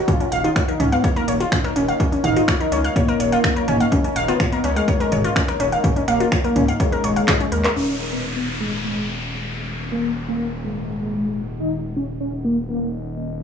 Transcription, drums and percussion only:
0.08 kick, closed hi-hat, mid tom
0.20 closed hi-hat
0.32 closed hi-hat
0.44 closed hi-hat
0.56 finger snap, kick, closed hi-hat
0.68 closed hi-hat
0.80 closed hi-hat, mid tom
0.92 closed hi-hat
1.04 kick, closed hi-hat
1.16 closed hi-hat
1.28 closed hi-hat
1.40 closed hi-hat
1.52 finger snap, kick, closed hi-hat, mid tom
1.64 finger snap, closed hi-hat
1.76 closed hi-hat
1.88 closed hi-hat
2.00 kick, closed hi-hat
2.12 closed hi-hat
2.24 closed hi-hat, mid tom
2.36 closed hi-hat
2.48 finger snap, kick, closed hi-hat
2.60 closed hi-hat
2.72 closed hi-hat
2.84 closed hi-hat
2.96 kick, closed hi-hat, mid tom
3.08 closed hi-hat
3.20 closed hi-hat
3.32 closed hi-hat
3.44 finger snap, kick, closed hi-hat
3.56 closed hi-hat
3.68 closed hi-hat, mid tom
3.80 closed hi-hat
3.92 kick, closed hi-hat
4.04 closed hi-hat
4.16 closed hi-hat
4.28 closed hi-hat
4.40 finger snap, kick, closed hi-hat, mid tom
4.52 closed hi-hat
4.64 closed hi-hat
4.76 closed hi-hat
4.88 kick, closed hi-hat
5.00 closed hi-hat
5.12 closed hi-hat, mid tom
5.24 closed hi-hat
5.36 finger snap, kick, closed hi-hat
5.48 finger snap, closed hi-hat
5.60 closed hi-hat
5.72 closed hi-hat
5.84 kick, closed hi-hat, mid tom
5.96 closed hi-hat
6.08 finger snap, closed hi-hat
6.20 closed hi-hat
6.32 finger snap, kick, closed hi-hat
6.44 closed hi-hat
6.56 closed hi-hat, mid tom
6.68 closed hi-hat
6.80 kick, closed hi-hat
6.92 closed hi-hat
7.04 closed hi-hat
7.16 closed hi-hat
7.28 finger snap, kick, clap, closed hi-hat, mid tom
7.40 closed hi-hat
7.52 closed hi-hat
7.64 clap, closed hi-hat

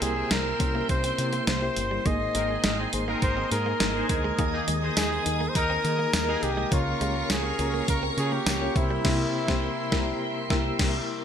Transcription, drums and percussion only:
0.02 closed hi-hat
0.31 snare, closed hi-hat
0.60 kick, closed hi-hat
0.89 kick, closed hi-hat
1.04 closed hi-hat
1.18 closed hi-hat
1.33 closed hi-hat
1.47 snare, closed hi-hat
1.76 closed hi-hat
2.06 kick, closed hi-hat
2.35 closed hi-hat
2.64 snare, closed hi-hat
2.93 closed hi-hat
3.22 kick, closed hi-hat
3.52 closed hi-hat
3.80 snare, closed hi-hat
4.09 kick, closed hi-hat
4.39 kick, closed hi-hat
4.68 closed hi-hat
4.97 snare, closed hi-hat, tambourine
5.26 closed hi-hat
5.55 kick, closed hi-hat
5.85 closed hi-hat
6.13 snare, closed hi-hat, tambourine
6.43 closed hi-hat
6.72 kick, closed hi-hat
7.01 closed hi-hat
7.30 snare, closed hi-hat, tambourine
7.59 closed hi-hat
7.88 kick, closed hi-hat
8.18 closed hi-hat
8.46 snare, closed hi-hat, tambourine
8.76 kick, closed hi-hat
9.05 kick, snare, crash
9.48 kick, snare
9.92 kick, snare
10.50 kick, snare
10.79 kick, snare, crash

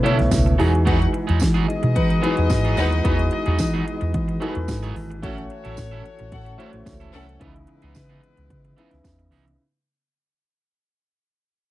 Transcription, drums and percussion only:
0.06 closed hi-hat
0.19 snare, closed hi-hat
0.31 kick, snare, closed hi-hat, tambourine
0.47 closed hi-hat
0.60 open hi-hat
0.75 closed hi-hat
0.87 kick, closed hi-hat
1.02 closed hi-hat
1.14 closed hi-hat
1.29 closed hi-hat
1.40 kick, snare, closed hi-hat, tambourine
1.70 closed hi-hat
1.83 closed hi-hat
1.96 kick, closed hi-hat
2.10 closed hi-hat
2.24 closed hi-hat
2.37 closed hi-hat
2.50 kick, snare, closed hi-hat, tambourine
2.65 closed hi-hat
2.77 open hi-hat
2.92 closed hi-hat
3.05 kick, closed hi-hat
3.19 closed hi-hat
3.31 closed hi-hat
3.46 closed hi-hat
3.59 kick, snare, closed hi-hat, tambourine
3.88 closed hi-hat
4.01 closed hi-hat
4.14 kick, closed hi-hat
4.29 closed hi-hat
4.42 closed hi-hat
4.55 closed hi-hat
4.68 kick, snare, closed hi-hat, tambourine
4.84 closed hi-hat
4.96 open hi-hat
5.11 closed hi-hat
5.23 kick, closed hi-hat
5.38 closed hi-hat
5.50 closed hi-hat
5.65 closed hi-hat
5.77 kick, snare, closed hi-hat, tambourine
6.06 closed hi-hat
6.19 closed hi-hat
6.32 kick, closed hi-hat
6.46 closed hi-hat
6.60 closed hi-hat
6.73 closed hi-hat
6.86 kick, snare, closed hi-hat, tambourine
7.01 closed hi-hat
7.14 open hi-hat
7.29 closed hi-hat
7.41 kick, closed hi-hat
7.56 closed hi-hat
7.67 closed hi-hat
7.82 closed hi-hat
7.95 kick, snare, closed hi-hat, tambourine
8.24 closed hi-hat
8.37 closed hi-hat
8.50 kick, closed hi-hat
8.65 closed hi-hat
8.78 closed hi-hat
8.91 snare, closed hi-hat
9.04 kick, snare, closed hi-hat, tambourine
9.32 open hi-hat
9.48 closed hi-hat

